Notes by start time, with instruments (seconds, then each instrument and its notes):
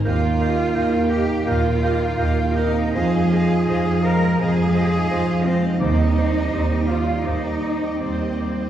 Already playing: harp D#4 D#5
0.04 double bass section D#2, felt piano D#2, harp D#3, french horn section A#3, cello section F4, viola section G4, clarinet A#4, violin section D#5 F5, flute section F5, oboe G5
0.23 harp A#3, viola section A#4, violin section F5 G5
0.30 felt piano A#3
0.40 harp D#4, viola section G4, clarinet A#4, violin section D#5 F5, oboe G5
0.53 felt piano D#4
0.58 harp G4, viola section A#4, violin section F5 G5
0.74 double bass section D#2, viola section G4, clarinet A#4, felt piano A#4, harp A#4, violin section D#5 F5, oboe G5
0.92 viola section A#4, violin section F5 G5, harp F5
1.00 felt piano G4
1.09 french horn section D#4, viola section G4, cello section G4, clarinet A#4, violin section D#5 F5, flute section G5, oboe G5, harp G5
1.25 felt piano A#3, viola section A#4
1.29 violin section F5 G5, harp A#5
1.44 double bass section D#2, french horn section A#3, cello section F4, viola section G4, clarinet A#4, violin section D#5 F5, flute section F5, oboe G5, harp G5
1.49 felt piano A#2
1.62 viola section A#4, violin section F5 G5, harp A#5
1.73 felt piano A#3
1.79 viola section G4, violin section D#5, oboe G5
1.84 clarinet A#4, violin section F5, harp G5
1.97 felt piano D#4, viola section A#4, violin section F5
2.02 harp A#4, violin section G5
2.16 double bass section D#2, viola section G4, clarinet A#4, felt piano A#4, violin section D#5, oboe G5
2.20 harp G4, violin section F5
2.35 harp A#3, viola section A#4, violin section F5 G5
2.44 felt piano G4
2.54 french horn section C4, cello section D#4, harp D#4, viola section G4, clarinet A#4, flute section D#5, violin section D#5 F5, oboe G5
2.70 felt piano A#3, viola section A#4
2.74 harp A#3, violin section F5 G5
2.93 double bass section F2, felt piano F2, harp F3, viola section F4, french horn section F4, cello section G#4, violin section C5 F5, clarinet C5, oboe D#5, flute section G#5
3.13 harp G#3, viola section G#4, violin section D#5 F5
3.21 felt piano G#3
3.30 harp D#4, viola section F4, violin section C5 F5, clarinet C5, oboe D#5
3.45 felt piano D#4, viola section G#4, violin section F5
3.51 harp C5, violin section D#5
3.66 double bass section F2, viola section F4, harp G#4, felt piano G#4, violin section C5 F5, clarinet C5, oboe D#5
3.84 viola section G#4, violin section D#5 F5
3.93 felt piano C5
4.02 viola section F4, french horn section G#4, cello section A#4, violin section C5 F5, clarinet C5, oboe D#5, flute section A#5, harp C6
4.17 felt piano G#3, viola section G#4
4.22 violin section D#5 F5, harp G#5
4.37 double bass section F2, felt piano C3, viola section F4, french horn section F4, cello section G#4, violin section C5 F5, oboe D#5, flute section G#5, harp C6
4.41 clarinet C5
4.57 viola section G#4, violin section D#5 F5, harp G#5
4.63 felt piano G#3
4.72 viola section F4, clarinet C5, violin section C5 F5, oboe D#5, harp C6
4.88 felt piano D#4, viola section G#4
4.93 harp G#4, violin section D#5 F5
5.08 double bass section F2, viola section F4, felt piano G#4, violin section C5, clarinet C5, harp C5, oboe D#5
5.13 violin section F5
5.28 harp G#3, viola section G#4, violin section D#5 F5
5.34 felt piano C5
5.44 french horn section G#3, cello section C4, harp D#4, viola section F4, flute section C5, violin section C5 F5, clarinet C5, oboe D#5
5.57 felt piano G#3
5.63 harp G#3, viola section G#4, violin section D#5 F5
5.80 felt piano D#2, double bass section D#2, timpani D#3, harp D#3, french horn section C4, cello section D#4, viola section D#4, violin section C5, clarinet C5, oboe D5, flute section D#5
5.85 violin section D5
5.99 harp G3, viola section G4, violin section D5
6.03 felt piano G3, violin section D#5
6.16 viola section D#4, harp D#4, violin section C5, clarinet C5, oboe D5
6.20 violin section D5
6.29 felt piano D#4
6.34 viola section G4, harp C5, violin section D5
6.39 violin section D#5
6.52 double bass section D#2, viola section D#4, felt piano G4, harp G4, violin section C5, clarinet C5, oboe D5
6.57 violin section D5
6.70 viola section G4, violin section D5
6.74 felt piano C5, violin section D#5
6.87 viola section D#4, cello section F4, violin section C5, clarinet C5, oboe D5, french horn section D5, flute section F5, harp C6
6.93 violin section D5
7.02 felt piano G3
7.07 viola section G4, violin section D5 D#5, harp G5
7.24 double bass section D#2, felt piano D#2, french horn section C4, viola section D#4, cello section D#4, violin section C5, clarinet C5, oboe D5, flute section D#5, harp C6
7.29 violin section D5
7.43 viola section G4, violin section D5 D#5, harp G5
7.51 felt piano D#3
7.62 viola section D#4, violin section C5 D5, clarinet C5, oboe D5, harp C6
7.77 felt piano D#4
7.82 viola section G4, harp G4, violin section D5 D#5
8.00 double bass section D#2, french horn section G3, cello section C4, viola section D#4, felt piano G4, clarinet C5, flute section C5, violin section C5 D5, harp C5, oboe D5
8.19 viola section G4, violin section D5 D#5
8.23 harp G3
8.30 felt piano C5
8.39 viola section D#4, harp D#4, clarinet C5, violin section C5 D5, oboe D5
8.54 felt piano G3
8.58 harp G3, viola section G4, violin section D5 D#5